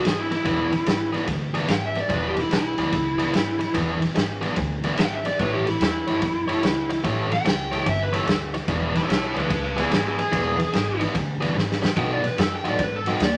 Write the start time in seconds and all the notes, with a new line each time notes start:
0.04 G#1 G#4, muted overdriven electric guitar stroke, snare, ride
0.19 E4
0.31 E4, muted overdriven electric guitar stroke, snare, ride
0.45 E1 E3 B3 D4 G#4, kick, snare, ride
0.72 muted overdriven electric guitar stroke, snare, ride
0.86 G#1, muted overdriven electric guitar stroke, snare, ride
1.12 E3 B3 D4 G#4, snare, ride
1.26 D2, muted overdriven electric guitar stroke, kick, snare, ride
1.54 E3 B3 D4 G#4, snare, ride
1.68 G#1 G5, muted overdriven electric guitar stroke, snare, ride
1.86 E5
1.95 muted overdriven electric guitar stroke, snare, ride
2.00 D5
2.09 E1 E3 B3 D4 G#4, kick, snare, ride
2.13 B4
2.27 G4
2.37 E4, muted overdriven electric guitar stroke, snare, ride
2.49 B1, muted overdriven electric guitar stroke, snare, ride
2.54 E4
2.78 D2 E3 B3 D4 G#4, snare, ride
2.92 C#2, muted overdriven electric guitar stroke, kick, snare, ride
3.18 E3 B3 D4 G#4, snare, ride
3.33 G#1, muted overdriven electric guitar stroke, snare, ride
3.59 muted overdriven electric guitar stroke, snare, ride
3.74 E1 E3 B3 D4 G#4, kick, snare, ride
4.00 muted overdriven electric guitar stroke, snare, ride
4.15 G#1, muted overdriven electric guitar stroke, snare, ride
4.41 E3 B3 D4 G#4, snare, ride
4.56 D2, muted overdriven electric guitar stroke, kick, snare, ride
4.84 E3 B3 D4 G#4, snare, ride
4.97 G#1 G5, muted overdriven electric guitar stroke, snare, ride
5.13 E5
5.25 D5, muted overdriven electric guitar stroke, snare, ride
5.39 A1 A3 E4 G4 B4 C#5, kick, snare, ride
5.53 G4
5.66 E4, muted overdriven electric guitar stroke, snare, ride
5.80 E2 E4, muted overdriven electric guitar stroke, snare, ride
6.07 G2 A3 E4 G4 C#5, snare, ride
6.22 F#2, muted overdriven electric guitar stroke, kick, snare, ride
6.48 A3 E4 G4 C#5, snare, ride
6.63 C#2, muted overdriven electric guitar stroke, snare, ride
6.90 muted overdriven electric guitar stroke, snare, ride
7.04 A1 A3 E4 G4 C#5, kick, snare, ride
7.31 G5, muted overdriven electric guitar stroke, snare, ride
7.45 C#2, muted overdriven electric guitar stroke, snare, ride
7.71 A3 E4 G4 C#5, snare, ride
7.86 G1 E5, muted overdriven electric guitar stroke, kick, snare, ride
8.03 B4
8.13 A3 E4 G4 A4 C#5, snare, ride
8.26 D2, muted overdriven electric guitar stroke, snare, ride
8.54 muted overdriven electric guitar stroke, snare, ride
8.68 E1 E3 B3 D4 G#4, kick, snare, ride
8.95 E4 C#5, muted overdriven electric guitar stroke, snare, ride
9.08 B1 E4 C#5, muted overdriven electric guitar stroke, snare, ride
9.24 E4 C#5
9.34 D2 E3 B3 D4 G#4 B4, snare, ride
9.49 C#2 D4 B4, muted overdriven electric guitar stroke, kick, snare, ride
9.63 D4 B4
9.77 E3 B3 D4 G#4, snare, ride
9.91 G#1 B3 G#4, muted overdriven electric guitar stroke, snare, ride
10.05 B3 G#4
10.18 G#4, muted overdriven electric guitar stroke, snare, ride
10.32 E1 E3 B3 D4 G#4, kick, snare, ride
10.58 muted overdriven electric guitar stroke, snare, ride
10.73 G#1, muted overdriven electric guitar stroke, snare, ride
11.00 E3 B3 D4 G#4, snare, ride
11.14 D2, muted overdriven electric guitar stroke, kick, snare, ride
11.41 E3 B3 D4 G#4, snare, ride
11.54 G#1, muted overdriven electric guitar stroke
11.58 snare
11.72 snare
11.82 muted overdriven electric guitar stroke, snare
11.97 B1 B2 A3 D#4 F#4 G5, kick, snare, ride
12.13 D5
12.23 B4, muted overdriven electric guitar stroke, snare, ride
12.38 F#2 A4, muted overdriven electric guitar stroke, snare, ride
12.56 G5
12.64 A2 B2 A3 D#4 F#4, snare, ride
12.69 D5
12.79 G#2, muted overdriven electric guitar stroke, kick, snare, ride
12.83 B4
12.96 A4
13.06 B2 A3 D#4 F#4 G5, snare, ride
13.20 D#2 D5, muted overdriven electric guitar stroke, snare, ride